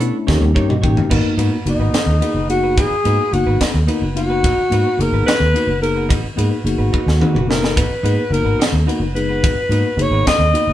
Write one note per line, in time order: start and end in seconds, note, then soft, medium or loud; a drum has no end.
0.00 0.10 B2 medium
0.00 0.27 A3 medium
0.00 0.25 B3 medium
0.00 0.26 C#4 medium
0.00 0.16 D4 medium
0.00 0.27 D4 medium
0.00 0.17 E4 medium
0.00 0.28 E4 medium
0.00 0.17 A4 medium
0.00 0.24 B4 loud
0.00 0.17 C#5 medium
0.00 closed hi-hat medium
0.27 0.40 D#2 loud
0.27 0.49 A#3 loud
0.27 0.44 A#3 medium
0.27 0.50 C#4 medium
0.27 0.44 D#4 medium
0.27 0.50 D#4 medium
0.27 0.44 G4 medium
0.27 0.50 G4 loud
0.27 0.44 C#5 medium
0.27 kick medium
0.27 snare medium
0.41 0.53 D#2 medium
0.41 high tom medium
0.54 0.85 G2 medium
0.54 0.72 A#3 medium
0.54 0.71 A#3 medium
0.54 0.72 C#4 medium
0.54 0.72 D#4 medium
0.54 0.72 G4 medium
0.54 0.73 G4 medium
0.54 0.68 C#5 medium
0.54 0.72 C#5 medium
0.54 kick medium
0.69 0.82 D#5 medium
0.69 mid tom medium
0.82 0.95 A1 medium
0.82 1.09 A#3 medium
0.82 1.11 C#4 medium
0.82 1.00 D#4 soft
0.82 1.11 D#4 medium
0.82 0.99 G4 medium
0.82 1.11 G4 medium
0.82 0.99 C#5 medium
0.82 1.09 G5 medium
0.82 kick medium
0.97 floor tom medium
1.10 1.23 G#1 medium
1.10 1.33 A#3 medium
1.10 1.33 B3 medium
1.10 1.27 D#4 medium
1.10 1.33 D#4 medium
1.10 1.27 F#4 medium
1.10 1.34 F#4 medium
1.10 1.27 B4 medium
1.10 kick medium
1.10 crash medium
1.24 muted fingered electric bass stroke soft
1.37 1.50 G#2 medium
1.37 1.55 A#3 medium
1.37 1.55 B3 medium
1.37 1.52 D#4 medium
1.37 1.55 D#4 medium
1.37 1.51 F#4 medium
1.37 1.56 F#4 medium
1.37 1.50 B4 medium
1.37 ride medium
1.51 1.69 F#4 soft
1.51 1.68 B4 soft
1.65 1.78 F#1 medium
1.65 2.00 A#3 medium
1.65 2.00 B3 medium
1.65 2.01 D#4 medium
1.65 2.01 F#4 medium
1.65 ride medium
1.70 2.47 D#4 medium
1.79 1.92 G#1 medium
1.79 1.92 F#4 soft
1.79 1.93 B4 soft
1.93 2.10 D#4 medium
1.93 2.10 F#4 medium
1.93 2.11 B4 medium
1.93 muted fingered electric bass stroke soft
1.93 snare loud
1.93 ride medium
2.06 2.19 D#2 medium
2.21 2.38 A#3 medium
2.21 2.39 B3 medium
2.21 2.35 D#4 medium
2.21 2.39 D#4 medium
2.21 2.35 F#4 medium
2.21 2.39 G#4 medium
2.21 2.34 B4 medium
2.21 ride medium
2.34 2.77 F#1 medium
2.34 2.53 F#4 soft
2.34 2.52 B4 medium
2.48 2.83 A#3 medium
2.48 2.83 B3 medium
2.48 2.84 D#4 medium
2.48 2.80 F#4 medium
2.48 2.84 G#4 medium
2.48 ride medium
2.63 2.77 F#4 soft
2.63 2.77 B4 soft
2.77 2.89 G#1 medium
2.77 2.94 D#4 medium
2.77 2.94 F#4 medium
2.77 3.35 G#4 medium
2.77 2.94 B4 medium
2.77 kick medium
2.77 ride medium
2.91 muted fingered electric bass stroke soft
3.04 3.17 G#2 medium
3.04 3.21 A#3 medium
3.04 3.22 B3 medium
3.04 3.19 D#4 medium
3.04 3.22 D#4 medium
3.04 3.19 F#4 medium
3.04 3.22 F#4 medium
3.04 3.18 B4 medium
3.04 ride medium
3.19 3.36 F#4 soft
3.19 3.36 B4 soft
3.31 3.45 F#1 loud
3.31 3.66 A#3 medium
3.31 3.67 B3 medium
3.31 3.67 D#4 medium
3.31 3.61 F#4 medium
3.31 3.67 F#4 medium
3.31 ride medium
3.47 3.59 G#1 medium
3.47 3.60 F#4 soft
3.47 3.60 B4 medium
3.60 3.77 D#4 medium
3.60 3.77 F#4 medium
3.60 3.77 B4 medium
3.60 kick medium
3.60 snare medium
3.60 ride medium
3.74 3.86 D#2 medium
3.87 4.05 A#3 medium
3.87 4.05 B3 medium
3.87 4.02 D#4 medium
3.87 4.05 D#4 medium
3.87 4.02 F#4 medium
3.87 4.06 F#4 medium
3.87 4.01 B4 medium
3.87 ride medium
4.02 4.44 F#1 medium
4.02 4.19 F#4 soft
4.02 4.19 B4 medium
4.15 4.50 A#3 medium
4.15 4.50 B3 medium
4.15 4.50 D#4 medium
4.15 5.03 F#4 medium
4.15 4.51 F#4 medium
4.15 ride medium
4.30 4.43 F#4 soft
4.30 4.44 B4 medium
4.44 4.56 G#1 loud
4.44 4.61 D#4 medium
4.44 4.61 F#4 medium
4.44 4.61 B4 medium
4.44 kick loud
4.44 ride medium
4.58 muted fingered electric bass stroke soft
4.70 4.84 G#2 medium
4.70 4.88 A#3 medium
4.70 4.88 B3 medium
4.70 4.88 D#4 medium
4.70 4.86 D#4 medium
4.70 4.88 F#4 medium
4.70 4.86 F#4 medium
4.70 4.85 B4 medium
4.70 ride medium
4.86 5.03 F#4 soft
4.86 5.02 B4 soft
4.97 5.11 F#1 loud
4.97 5.33 A#3 medium
4.97 5.33 B3 medium
4.97 5.33 D#4 medium
4.97 5.33 G#4 medium
4.97 ride medium
5.01 5.26 A#4 medium
5.12 5.25 G#1 medium
5.12 5.26 F#4 soft
5.12 5.26 B4 medium
5.26 5.44 D#4 medium
5.26 5.44 F#4 medium
5.26 5.78 B4 loud
5.26 5.44 B4 medium
5.26 muted fingered electric bass stroke soft
5.26 snare loud
5.26 ride medium
5.40 5.53 D#2 medium
5.54 5.71 A#3 medium
5.54 5.71 B3 medium
5.54 5.68 D#4 medium
5.54 5.72 D#4 medium
5.54 5.72 F#4 medium
5.54 5.68 F#4 medium
5.54 5.66 B4 medium
5.54 ride medium
5.67 6.10 F#1 medium
5.67 5.85 F#4 soft
5.67 5.85 B4 medium
5.81 6.16 A#3 medium
5.81 6.16 B3 soft
5.81 6.16 D#4 medium
5.81 6.17 G#4 medium
5.81 6.08 A#4 medium
5.81 ride medium
5.96 6.08 F#4 soft
5.96 6.08 B4 soft
6.09 6.23 G#1 loud
6.09 6.26 D#4 medium
6.09 6.26 F#4 medium
6.09 6.27 B4 medium
6.09 kick loud
6.09 ride medium
6.24 muted fingered electric bass stroke soft
6.36 6.50 G#2 medium
6.36 6.54 A#3 medium
6.36 6.54 B3 medium
6.36 6.51 D#4 medium
6.36 6.55 D#4 medium
6.36 6.50 F#4 medium
6.36 6.55 G#4 medium
6.36 6.49 B4 medium
6.36 ride medium
6.50 6.68 F#4 soft
6.50 6.68 B4 soft
6.64 6.77 F#1 medium
6.64 6.99 A#3 medium
6.64 6.99 B3 medium
6.64 6.99 D#4 medium
6.64 7.45 F#4 medium
6.64 7.00 G#4 medium
6.64 ride medium
6.78 6.91 G#1 medium
6.78 6.92 F#4 soft
6.78 6.92 B4 soft
6.93 7.10 D#4 medium
6.93 7.10 F#4 medium
6.93 7.10 B4 medium
6.93 kick medium
7.06 7.19 D#2 medium
7.06 snare medium
7.19 7.37 A#3 medium
7.19 7.38 B3 medium
7.19 7.38 D#4 medium
7.19 7.35 D#4 medium
7.19 7.35 F#4 medium
7.19 7.38 G#4 medium
7.19 7.33 B4 medium
7.19 mid tom medium
7.34 7.77 F#1 medium
7.34 7.52 F#4 soft
7.34 7.51 B4 soft
7.34 mid tom medium
7.47 7.82 A#3 medium
7.47 7.83 B3 medium
7.47 7.83 D#4 medium
7.47 7.83 F#4 medium
7.47 7.79 A#4 medium
7.51 snare medium
7.62 7.75 F#4 soft
7.62 7.76 B4 medium
7.62 snare medium
7.76 7.89 G#1 loud
7.76 7.93 D#4 medium
7.76 7.93 F#4 medium
7.76 7.93 B4 medium
7.76 8.34 B4 medium
7.76 kick loud
7.76 ride medium
7.91 muted fingered electric bass stroke soft
8.03 8.16 G#2 medium
8.03 8.21 A#3 medium
8.03 8.21 B3 medium
8.03 8.18 D#4 medium
8.03 8.22 D#4 medium
8.03 8.17 F#4 medium
8.03 8.22 G#4 medium
8.03 8.16 B4 medium
8.03 ride medium
8.17 8.35 F#4 soft
8.17 8.34 B4 soft
8.30 8.43 F#1 medium
8.30 8.66 A#3 medium
8.30 8.66 B3 medium
8.30 8.66 D#4 medium
8.30 8.67 F#4 medium
8.30 8.60 A#4 medium
8.30 ride medium
8.44 8.58 G#1 medium
8.44 8.58 F#4 soft
8.44 8.59 B4 soft
8.59 8.76 D#4 medium
8.59 8.76 F#4 medium
8.59 8.77 B4 medium
8.59 snare loud
8.59 ride medium
8.72 8.85 D#2 medium
8.86 9.04 A#3 medium
8.86 9.04 B3 medium
8.86 9.01 D#4 medium
8.86 9.05 D#4 medium
8.86 9.01 F#4 medium
8.86 9.05 F#4 medium
8.86 9.00 B4 medium
8.86 ride medium
9.00 9.44 F#1 medium
9.00 9.19 F#4 soft
9.00 9.18 B4 soft
9.14 9.49 G#3 medium
9.14 9.50 B3 medium
9.14 9.50 D#4 medium
9.14 9.50 G#4 medium
9.14 10.04 B4 loud
9.14 ride medium
9.29 9.42 F#4 soft
9.29 9.43 B4 soft
9.43 9.55 G#1 loud
9.43 9.60 D#4 medium
9.43 9.60 F#4 medium
9.43 9.60 B4 medium
9.43 kick loud
9.43 ride medium
9.55 muted fingered electric bass stroke soft
9.69 9.82 G#2 medium
9.69 9.87 A#3 medium
9.69 9.88 B3 medium
9.69 9.88 D#4 medium
9.69 9.85 D#4 medium
9.69 9.88 F#4 medium
9.69 9.85 F#4 medium
9.69 9.84 B4 medium
9.69 ride medium
9.85 10.02 F#4 soft
9.85 10.02 B4 medium
9.97 10.10 F#1 loud
9.97 10.32 A#3 medium
9.97 10.32 B3 medium
9.97 10.33 D#4 medium
9.97 10.33 G#4 medium
9.97 ride medium
10.02 10.27 C#5 medium
10.11 10.24 G#1 medium
10.11 10.26 F#4 soft
10.11 10.26 B4 soft
10.26 10.43 D#4 medium
10.26 10.43 F#4 medium
10.26 10.43 B4 medium
10.26 10.73 D#5 loud
10.26 kick medium
10.26 snare loud
10.26 ride medium
10.39 10.52 D#2 medium
10.53 10.71 A#3 medium
10.53 10.71 B3 medium
10.53 10.71 D#4 medium
10.53 10.68 D#4 medium
10.53 10.71 F#4 medium
10.53 10.68 F#4 medium
10.53 10.67 B4 medium
10.53 ride medium
10.67 10.73 F#1 medium
10.67 10.73 F#4 soft
10.67 10.73 B4 medium